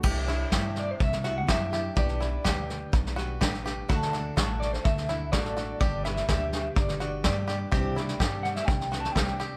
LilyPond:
<<
  \new Staff \with { instrumentName = "Clean electric guitar" } { \time 4/4 \key g \major \tempo 4 = 125 r4. d''16 c''16 e''8. fis''16 e''4 | d''2. r4 | r4. d''16 c''16 e''4 d''4 | d''8 e''8 e''4 d''4 d''8. r16 |
r4. fis''16 e''16 g''8. a''16 g''4 | }
  \new Staff \with { instrumentName = "Five-string banjo" } { \time 4/4 \key g \major g'8 e'8 g'4 r8 fis'8 g'8 g'8 | g'8 e'8 g'4 r8 fis'8 g'8 g'8 | fis'8 d'8 fis'4 r8 e'8 fis'8 fis'8 | g'8 e'8 g'4 r8 fis'8 g'8 g'8 |
g'8 e'8 g'4 r8 fis'8 g'8 g'8 | }
  \new Staff \with { instrumentName = "Steel-string acoustic guitar" } { \time 4/4 \key g \major <c c' d' e' g'>8 <d' e' g'>8 <c' d' e' g'>4. <d' e' g'>8 <c' d' e' g'>8 <d' e' g'>8 | <b d' g' b'>8 <d' g' b'>8 <b d' g' b'>4. <d' g' b'>8 <b d' g' b'>8 <d' g' b'>8 | <d a d' fis' a'>8 <d' fis' a'>8 <a d' fis' a'>4. <d' fis' a'>8 <a d' fis' a'>8 <d' fis' a'>8 | <g, d g d' g' b'>8 <g d' g' b'>8 <g d' g' b'>4. <g d' g' b'>8 <g d' g' b'>8 <g d' g' b'>8 |
<c e g c' d' g'>8 <g c' d' g'>8 <g c' d' g'>4. <g c' d' g'>8 <g c' d' g'>8 <g c' d' g'>8 | }
  \new Staff \with { instrumentName = "Steel-string acoustic guitar" } { \clef bass \time 4/4 \key g \major d1 | r1 | r1 | r1 |
r1 | }
  \new Staff \with { instrumentName = "Upright bass" } { \clef bass \time 4/4 \key g \major c,4 g,4 c,4 fis,4 | b,,4 d,4 b,,4 a,,4 | d,4 a,,4 d,4 a,,4 | g,,4 d,4 g,,4 g,4 |
c,4 g,4 c,4 c,4 | }
  \new DrumStaff \with { instrumentName = "Drums" } \drummode { \time 4/4 <cymc bd sn>8 sn8 <bd sn>8 sn8 <bd sn>16 sn16 sn8 <bd sn>8 sn8 | <bd sn>16 sn16 sn8 <bd sn>8 sn8 <bd sn>16 sn16 sn8 <bd sn>16 sn16 sn8 | <bd sn>16 sn16 sn8 <bd sn>8 sn16 sn16 <bd sn>16 sn16 sn8 <bd sn>16 sn16 sn8 | <bd sn>8 sn16 sn16 <bd sn>8 sn8 <bd sn>16 sn16 sn8 <bd sn>8 sn8 |
<bd sn>8 sn16 sn16 <bd sn>8 sn16 sn16 <bd sn>16 sn16 sn16 sn16 <bd sn>16 sn16 sn8 | }
>>